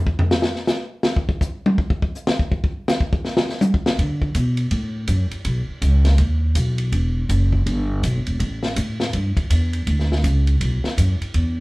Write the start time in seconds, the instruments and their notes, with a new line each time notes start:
0.07 kick
0.19 floor tom
0.31 snare
0.42 snare
0.55 snare
0.67 snare, hi-hat pedal
1.03 snare
1.17 kick
1.29 kick
1.41 kick, hi-hat pedal
1.66 high tom
1.78 kick
1.90 kick
2.02 kick
2.15 hi-hat pedal
2.27 snare
2.39 kick
2.52 kick
2.64 kick
2.88 snare, hi-hat pedal
3.01 kick
3.13 kick
3.25 snare
3.37 snare
3.49 snare
3.61 hi-hat pedal, high tom
3.74 kick
3.86 snare
3.99 upright bass D3, kick, ride
4.22 kick
4.35 upright bass B2, kick, hi-hat pedal, ride
4.57 ride
4.71 upright bass A2, kick, ride
5.07 upright bass F#2, kick, hi-hat pedal, ride
5.31 muted upright bass stroke, ride
5.45 upright bass B1, kick, ride
5.67 muted upright bass stroke
5.82 upright bass C#2, kick, hi-hat pedal, ride
6.05 snare, ride
6.18 upright bass D#2, kick, ride
6.55 upright bass B1, kick, hi-hat pedal, ride
6.78 ride
6.92 upright bass E1, kick, ride
7.29 upright bass F#1, kick, hi-hat pedal, ride
7.52 kick
7.66 upright bass G1, kick, ride
8.03 upright bass B1, kick, hi-hat pedal, ride
8.15 upright bass G1
8.27 upright bass E1, ride
8.39 upright bass A1, kick, ride
8.63 snare
8.76 upright bass A2, kick, hi-hat pedal, ride
9.00 snare
9.13 upright bass G2, kick, ride
9.37 muted upright bass stroke, kick, ride
9.50 upright bass E2, kick, hi-hat pedal, ride
9.73 ride
9.87 upright bass D2, kick, ride
9.99 snare
10.12 snare
10.24 upright bass C#2, kick, hi-hat pedal, ride
10.47 ride
10.61 upright bass B1, kick, ride
10.84 muted upright bass stroke, snare
10.98 upright bass F#2, kick, hi-hat pedal, ride
11.21 muted upright bass stroke, ride
11.34 upright bass E2, kick, ride